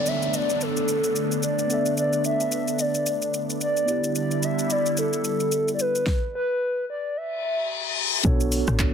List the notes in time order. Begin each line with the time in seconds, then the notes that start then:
Already playing: D3 A3 B3 D4 A4 C#5, downlifter
0.06 E5, shaker
0.22 shaker
0.34 D5, shaker
0.50 shaker
0.61 A4, shaker
0.77 shaker
0.88 shaker
1.04 shaker
1.16 shaker
1.32 shaker
1.43 D5, shaker
1.59 shaker
1.67 B3 D4, shaker
1.72 A4 E5
1.86 shaker
1.97 D5, shaker
2.13 shaker
2.24 E5, shaker
2.40 shaker
2.52 shaker
2.68 shaker
2.79 D5, shaker
2.95 shaker
3.06 shaker
3.22 shaker
3.34 shaker
3.50 shaker
3.61 D5, shaker
3.77 shaker
3.85 D3 G3 B3 E4, shaker
3.90 G4 D5
4.04 shaker
4.15 D5, shaker
4.31 shaker
4.43 E5, shaker
4.59 shaker
4.70 D5, shaker
4.86 shaker
4.97 A4, shaker
5.13 shaker
5.24 shaker
5.40 shaker
5.52 shaker
5.68 shaker
5.75 D5
5.79 B4, shaker
5.95 shaker
6.07 kick, snare
6.35 B4
6.90 D5
7.16 E5, reverse cymbal
8.23 B1 D3 A3 B3 D4 F#4 A4 C#5, kick, shaker
8.40 shaker
8.52 open hi-hat, shaker
8.67 A1, cross-stick, shaker
8.79 kick, clap, shaker